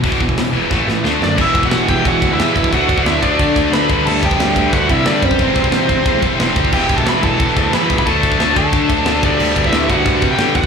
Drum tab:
CC |----------------|x---------------|----------------|x---------------|
RD |----------------|--x-x-x-x-x-x-x-|x-x-x-x-x-x-x-x-|--x-x-x-x-x-x-x-|
HH |o---o-----------|----------------|----------------|----------------|
SD |----o---o-o-o-o-|----o-------o---|----o-------o---|----o-------o---|
BD |oooo----o-------|o-oo--o-o-o---oo|o-oo--o-o-o---o-|--oo--o-o-o---oo|

CC |----------------|x---------------|----------------|x---------------|
RD |x-x-x-x-x-x-x-x-|--x-x-x-x-x-x-x-|x-x-x-x-x-x-x-x-|--x-x-x-x-x-x-x-|
HH |----------------|----------------|----------------|----------------|
SD |----o-------o---|----o-------o---|----o-------o---|----o-------o---|
BD |o-oo--o-o-o---oo|o-oo--o-o-o---oo|o-oo--o-o-o---o-|--oo--o-o-o---o-|